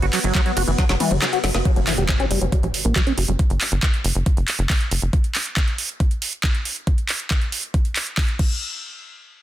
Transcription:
Already playing: F#3 B3
0.02 G1 F#4, closed hi-hat
0.13 F#3, clap, open hi-hat, ride
0.24 G1 F#3, closed hi-hat
0.35 F#3, kick, clap, closed hi-hat, ride
0.46 F#3, closed hi-hat
0.57 F#1 F#4, open hi-hat, ride
0.68 F#1 E3, closed hi-hat
0.78 F#3, kick, snare, closed hi-hat, ride
0.89 F#1 F#3, snare, closed hi-hat
1.00 E3, open hi-hat, high tom, ride
1.11 F#1 G3, closed hi-hat, mid tom
1.22 F#3, snare, clap, closed hi-hat, ride
1.33 F#4, closed hi-hat
1.44 F#1 F#3, snare, open hi-hat, ride
1.55 F#1 A#3, snare, closed hi-hat
1.65 F#3, kick, closed hi-hat, impact
1.76 F#1 F#3, closed hi-hat
1.87 E3, clap, open hi-hat
1.98 F#1 G4, closed hi-hat
2.09 C#4, kick, clap, closed hi-hat
2.20 C#4, closed hi-hat
2.31 F#1 G3, open hi-hat
2.41 F#1 F#3, closed hi-hat
2.52 F#3, kick, closed hi-hat
2.63 A#1 F#3, closed hi-hat
2.74 open hi-hat
2.85 A#1 A#3, closed hi-hat
2.96 F#3, kick, clap, closed hi-hat
3.07 C#4, closed hi-hat
3.18 F#1 F#4, open hi-hat
3.28 F#1 F#3, closed hi-hat
3.39 kick, closed hi-hat
3.50 G1, closed hi-hat
3.61 clap, open hi-hat
3.72 G1, closed hi-hat
3.83 kick, clap, closed hi-hat
3.94 closed hi-hat
4.04 F#1, open hi-hat
4.15 F#1, closed hi-hat
4.26 kick, closed hi-hat
4.37 F#1, closed hi-hat
4.48 clap, open hi-hat
4.59 F#1, closed hi-hat
4.70 kick, clap, open hi-hat
4.81 closed hi-hat
4.91 F#1, open hi-hat
5.02 F#1, closed hi-hat
5.13 kick, closed hi-hat
5.24 closed hi-hat
5.35 clap, open hi-hat
5.46 closed hi-hat
5.57 kick, clap, closed hi-hat
5.68 closed hi-hat
5.78 open hi-hat
5.89 closed hi-hat
6.00 kick, closed hi-hat
6.11 closed hi-hat
6.22 open hi-hat
6.33 closed hi-hat
6.44 kick, clap, closed hi-hat
6.55 closed hi-hat
6.65 open hi-hat
6.76 closed hi-hat
6.87 kick, closed hi-hat
6.98 closed hi-hat
7.09 clap, open hi-hat
7.20 closed hi-hat
7.31 kick, clap, closed hi-hat
7.41 closed hi-hat
7.52 open hi-hat
7.63 closed hi-hat
7.74 kick, closed hi-hat
7.85 closed hi-hat
7.96 clap, open hi-hat
8.07 closed hi-hat
8.18 kick, clap, open hi-hat
8.28 closed hi-hat
8.39 kick, crash

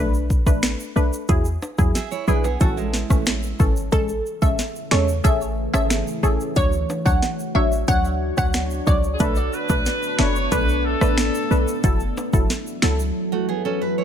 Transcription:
Already playing: B1 A3 D4 B4
0.14 shaker
0.30 kick, shaker
0.46 A1 A3 D4 B4, kick, shaker
0.63 finger snap, snare, closed hi-hat, shaker
0.80 shaker
0.96 B1 A3 D4 B4, shaker
1.13 shaker
1.29 E2 F#3 E4 G#4, kick, closed hi-hat, shaker
1.45 shaker
1.62 high timbale, shaker
1.78 E2 F#3 E4 G#4, kick, shaker
1.95 G#4 E5, snare, closed hi-hat, shaker
2.11 E4 C#5, shaker
2.27 B1 F#3 D4 E4 G#4 B4, shaker
2.44 B3 G#4, high timbale, shaker
2.60 A1 E3 A3 C#4 F#4 A4, kick, closed hi-hat, shaker
2.77 G#3 E4, shaker
2.94 snare, shaker
3.10 A1 E3 A3 C#4, kick, cross-stick, shaker
3.26 finger snap, snare, closed hi-hat, shaker
3.43 shaker
3.59 G#1 E3 C#4 A4, kick, shaker
3.76 shaker
3.92 A1 C#3 E3 G#3 A3 C#4 A4, kick, closed hi-hat, shaker
4.09 shaker
4.26 shaker
4.42 A1 G#3 C#4 A4 E5, kick, shaker
4.59 snare, closed hi-hat, shaker
4.76 shaker
4.91 E2 G#3 C#4 A4 C#5, finger snap, snare
5.08 shaker
5.24 A1 C#4 G#4 A4 E5, kick, closed hi-hat, shaker
5.41 shaker
5.73 G#1 C#4 G#4 A4 E5, cross-stick, shaker
5.90 finger snap, snare, closed hi-hat, shaker
6.07 shaker
6.23 A1 C#4 G#4 A4, shaker
6.41 shaker
6.56 D2 F#3 D4 F#4 C#5, kick, closed hi-hat, shaker
6.72 shaker
6.90 high timbale, shaker
7.05 D2 F#3 D4 C#5 F#5, kick, shaker
7.22 snare, closed hi-hat, shaker
7.39 shaker
7.55 A1 F#3 D4 C#5 E5
7.72 shaker
7.88 D2 F#3 D4 C#5 F#5, kick, closed hi-hat, shaker
8.05 shaker
8.37 D2 F#3 D4 C#5 F#5, kick, cross-stick, shaker
8.54 finger snap, snare, closed hi-hat, shaker
8.70 shaker
8.87 C#2 F#3 D4 C#5 D5, kick, shaker
9.04 shaker
9.13 G#4
9.19 B1 A3 B3 D4 A4 B4, kick, closed hi-hat, shaker
9.35 shaker
9.53 B4, shaker
9.69 B1 A3 D4 B4, kick, shaker
9.86 snare, closed hi-hat, shaker
10.03 shaker
10.19 F#1 A3 D4 B4 C#5, finger snap, snare
10.36 shaker
10.52 B1 A3 D4 B4, kick, closed hi-hat, shaker
10.69 shaker
10.85 A4
11.01 A1 A3 D4 B4, cross-stick, shaker
11.18 finger snap, snare, closed hi-hat, shaker
11.35 shaker
11.51 B1 A3 D4 B4, shaker
11.68 shaker
11.84 F#1 F#3 E4 A4, kick, closed hi-hat, shaker
12.00 shaker
12.17 high timbale, shaker
12.33 F#1 F#3 E4 A4, kick, shaker
12.50 snare, closed hi-hat, shaker
12.67 shaker
12.82 C#2 F#3 E4 A4, finger snap, snare, shaker
13.00 shaker
13.32 A3 F#4
13.49 B3 G#4
13.65 C#4 A4
13.81 B4
13.98 E4 C#5

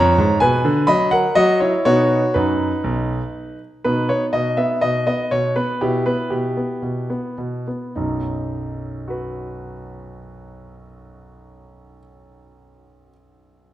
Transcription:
Already playing: F2 C#5 A#5
0.18 G#2
0.40 B2 B4 G#5
0.65 D3
0.87 F#3 D#5 B5
1.11 A#4 F#5
1.35 F#3 F#4 D#5
1.60 E4 C#5
1.85 B2 B3 D#4 F#4 C#5
2.34 F#2 D#4 B4
2.84 B1
3.84 B2 B3 D#4 B4
4.09 B3 C#5
4.33 B2 D#5
4.57 B3 E5
4.81 B2 D#5
5.07 B3 D#5
5.31 B2 C#5
5.56 B3 B4
5.81 B2 B3 E4 G4
6.06 B3 B4
6.30 B2 G4
6.57 B3
6.82 B2
7.10 B3
7.38 B2
7.67 B3
7.96 B1 F#2 D#4
9.08 F#4 B4

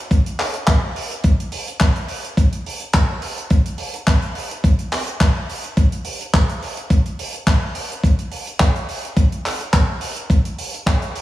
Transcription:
0.11 kick, closed hi-hat
0.26 closed hi-hat
0.39 clap, open hi-hat
0.54 closed hi-hat
0.67 kick, clap, closed hi-hat
0.96 open hi-hat
1.11 closed hi-hat
1.24 kick, closed hi-hat
1.40 closed hi-hat
1.52 open hi-hat
1.68 closed hi-hat
1.80 kick, clap, closed hi-hat
1.96 closed hi-hat
2.08 open hi-hat
2.25 closed hi-hat
2.37 kick, closed hi-hat
2.53 closed hi-hat
2.66 open hi-hat
2.80 closed hi-hat
2.93 kick, clap, closed hi-hat
3.22 open hi-hat
3.38 closed hi-hat
3.50 kick, closed hi-hat
3.66 closed hi-hat
3.78 open hi-hat
3.94 closed hi-hat
4.07 kick, clap, closed hi-hat
4.22 closed hi-hat
4.35 open hi-hat
4.51 closed hi-hat
4.64 kick, closed hi-hat
4.79 closed hi-hat
4.92 clap, open hi-hat
5.07 closed hi-hat
5.20 kick, clap, closed hi-hat
5.50 open hi-hat
5.64 closed hi-hat
5.77 kick, closed hi-hat
5.92 closed hi-hat
6.05 open hi-hat
6.21 closed hi-hat
6.34 kick, clap, closed hi-hat
6.50 closed hi-hat
6.62 open hi-hat
6.77 closed hi-hat
6.90 kick, closed hi-hat
7.06 closed hi-hat
7.19 open hi-hat
7.34 closed hi-hat
7.47 kick, clap, closed hi-hat
7.75 open hi-hat
7.92 closed hi-hat
8.04 kick, closed hi-hat
8.19 closed hi-hat
8.32 open hi-hat
8.47 closed hi-hat
8.60 kick, clap, closed hi-hat
8.76 closed hi-hat
8.89 open hi-hat
9.05 closed hi-hat
9.17 kick, closed hi-hat
9.32 closed hi-hat
9.45 clap, open hi-hat
9.60 closed hi-hat
9.73 kick, clap, closed hi-hat
10.01 open hi-hat
10.16 closed hi-hat
10.30 kick, closed hi-hat
10.45 closed hi-hat
10.58 open hi-hat
10.74 closed hi-hat
10.86 kick, clap, closed hi-hat
11.02 closed hi-hat
11.15 open hi-hat

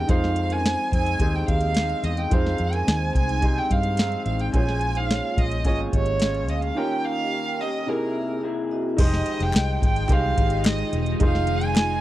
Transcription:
Already playing: C#4 F4 G4 A#4 G5
0.07 F2 D#3 G#3 C4 D#4 F4 G#4 C5 F5, kick, closed hi-hat
0.24 snare
0.36 closed hi-hat
0.50 C#4 A#4 G#5, closed hi-hat
0.65 D#4 C5, snare, closed hi-hat
0.92 F2 D#3 G#3 C4 D#4 C5 G#5, kick, closed hi-hat
1.06 closed hi-hat
1.19 D#2 F2 D#3 G#3 C4 D#4 G4 G#4 C5, kick, closed hi-hat
1.35 G5
1.47 D#2 G4 D#5 F5, kick, closed hi-hat
1.61 closed hi-hat
1.75 F2 D#3 G#3, snare, closed hi-hat
1.79 C4
1.90 closed hi-hat
2.03 E2 G#4 D#5 F5, closed hi-hat
2.17 G5, closed hi-hat
2.30 F2 D#3 G#3 D#4 F4 G#4 C5 F5, kick, closed hi-hat
2.35 C4
2.46 snare
2.58 F2, closed hi-hat
2.73 C#4 A#4 G#5, closed hi-hat
2.85 D#2 D#4 C5, snare, closed hi-hat
3.15 C2 D#4 C5 G#5, kick, closed hi-hat
3.29 closed hi-hat
3.41 F2 D#3 G#3 C4 D#4 G4 G#4 C5, kick, closed hi-hat
3.58 G5
3.70 G2 G4 D#5 F5, kick, closed hi-hat
3.83 closed hi-hat
3.97 F2 D#3 G#3 C4, snare, closed hi-hat
4.12 closed hi-hat
4.26 A1 G#4 F5, closed hi-hat
4.39 G5, closed hi-hat
4.52 A#1 A#2 G#3 C#4 F4 G#4 C5 C#5 G#5, kick, closed hi-hat
4.57 F4
4.68 snare
4.81 closed hi-hat
4.95 D#4 C5 F5, closed hi-hat
5.09 F4 C#5, snare, closed hi-hat
5.37 A#1 F4 C#5 D#5, kick, closed hi-hat
5.51 closed hi-hat
5.64 G#1 A#2 G#3 C#4 F4 G#4 C#5 D#5, kick, closed hi-hat
5.93 G#1 G4 C#5 D#5, kick, closed hi-hat
6.06 closed hi-hat
6.20 A#2 G#3 C#4 F4, snare, closed hi-hat
6.35 closed hi-hat
6.48 D2 G#4 D#5 F5, closed hi-hat
6.62 F5, closed hi-hat
6.75 D#3 A#3 C#4 F4 G4 A#4 C#5 G5
7.05 F5
7.18 G4 D#5
7.32 A#4 G5
7.59 A#3 C#4 G4 D#5
7.86 C3 A#3 D#4 E4 G#4 A#4
8.15 G#4 E5
8.42 C3 A#3 E4 G#4
8.71 F#4 D#5
8.97 F1 D#3 F3 G#3 D#4 F4 G4 G#4 C5, kick, closed hi-hat, crash
9.02 G4 D#5
9.14 snare
9.26 closed hi-hat
9.40 F1 G5, closed hi-hat
9.53 C2, snare, clap, closed hi-hat
9.82 G#1 G5, kick, closed hi-hat
9.96 closed hi-hat
10.08 C2 F3 G#3 D#4 G4 G#4 C5, kick, clap, closed hi-hat
10.12 F5
10.36 G#1 G#3 D#4 G4, kick, closed hi-hat
10.50 closed hi-hat
10.64 snare, clap, closed hi-hat
10.68 D#5
10.78 closed hi-hat
10.93 E1, closed hi-hat
11.06 closed hi-hat
11.19 F1 F3 G#3 D#4 F4 G#4 C5 F5, kick, closed hi-hat
11.35 snare
11.47 closed hi-hat
11.61 closed hi-hat
11.66 G#5
11.76 snare, clap, closed hi-hat

